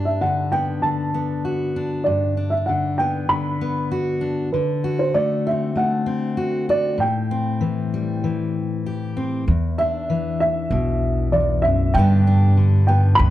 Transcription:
Already playing: G2 G3 D4
0.05 E5
0.21 D3 F#5
0.52 B3 G5
0.82 D3 A5
1.14 B3
1.45 F#4
1.76 D4
2.04 G2 D5
2.37 D4
2.50 E5
2.66 D3 F#5
2.98 B3 G5
3.29 D3 B5
3.61 B3
3.92 F#4
4.21 D4
4.52 D3 B4
4.84 F#4
4.99 C5
5.14 A3 D5
5.47 C4 E5
5.76 A3 F#5
6.06 C4
6.37 F#4
6.69 F#4 D5
6.98 A2 G5
7.31 C4
7.61 E3
7.94 G3
8.24 E3
8.86 G4
9.17 C4
9.48 E2
9.78 D4 E5
10.10 E3
10.40 E5
10.70 B1 B2
11.32 E2 D5
11.62 F#2 E5
11.94 G2 D3 G5
11.98 B3 D4 G4
12.27 D4
12.57 D3
12.87 B3 G5
13.15 D2 G2 B5

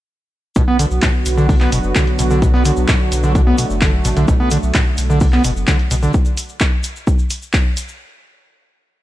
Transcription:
0.56 B1 B2 D3 F#3 B3 F#4, kick, closed hi-hat, shaker
0.68 B3
0.79 D3, closed hi-hat, open hi-hat, shaker
0.91 B1, shaker
1.02 A2, kick, snare, clap, closed hi-hat, shaker
1.26 B1, closed hi-hat, open hi-hat, shaker
1.37 D3, shaker
1.49 D3, kick, open hi-hat, shaker
1.60 B3, clap
1.72 F#1 B2, closed hi-hat, open hi-hat, shaker
1.83 F#1, shaker
1.95 D3, kick, snare, clap, closed hi-hat, shaker
2.07 closed hi-hat
2.19 B1 B2, closed hi-hat, open hi-hat, shaker
2.30 D3, shaker
2.42 B2, kick, closed hi-hat, shaker
2.54 B3, snare
2.65 D3, closed hi-hat, open hi-hat, shaker
2.76 B1, shaker
2.88 A2, kick, snare, clap, closed hi-hat, shaker
3.12 B1, closed hi-hat, open hi-hat, shaker
3.23 D3, shaker
3.35 A3, kick, closed hi-hat, shaker
3.47 B3
3.58 B2, closed hi-hat, open hi-hat, shaker
3.70 F#1, shaker
3.81 D3, kick, snare, clap, closed hi-hat, shaker
4.05 A1 B2, closed hi-hat, open hi-hat, shaker
4.17 B1 D3, closed hi-hat, shaker
4.28 B1 B2, kick, closed hi-hat, shaker
4.40 B3
4.51 D3, closed hi-hat, open hi-hat, shaker
4.63 B1, shaker
4.74 A2, kick, snare, clap, closed hi-hat, shaker
4.97 B1, closed hi-hat, open hi-hat, shaker
5.10 D3, shaker
5.21 D3, kick, open hi-hat, shaker
5.33 B3, clap
5.44 F#1 B2, closed hi-hat, open hi-hat, shaker
5.56 F#1, shaker
5.67 D3, kick, snare, clap, closed hi-hat, shaker
5.79 closed hi-hat
5.91 B1 B2, closed hi-hat, open hi-hat, shaker
6.03 D3, shaker
6.14 kick, shaker
6.25 shaker
6.37 open hi-hat, shaker
6.49 shaker
6.60 kick, clap, shaker
6.83 open hi-hat, shaker
6.96 shaker
7.07 kick, shaker
7.19 shaker
7.30 open hi-hat, shaker
7.42 shaker
7.53 kick, clap, shaker
7.77 open hi-hat, shaker
7.88 shaker

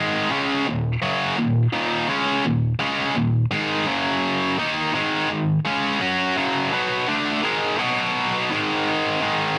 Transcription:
Already playing: G#2 D#3 G#3
0.30 C#3 G#3 C#4
0.67 D#2 A#2
1.02 F#2 C#3 F#3
1.37 D#2 A#2
1.73 D#2 A#2 D#3
2.08 C#3 G#3 C#4
2.44 D#2 A#2
2.79 C#3 G#3 C#4
3.16 D#2 A#2
3.51 G#2 D#3 G#3
3.86 F#2 C#3 F#3
4.58 D#3 A#3 D#4
4.93 G#2 D#3 G#3
5.29 G#2 D#3
5.65 C#3 G#3 C#4
6.00 F#3 C#4 F#4
6.36 F#2 C#3 F#3
6.72 B2 F#3 B3
7.08 D3 A3 D4
7.43 G#2 D#3 G#3
7.79 B2 F#3 B3
8.51 G#2 D#3 G#3
9.22 G#2 D#3 G#3

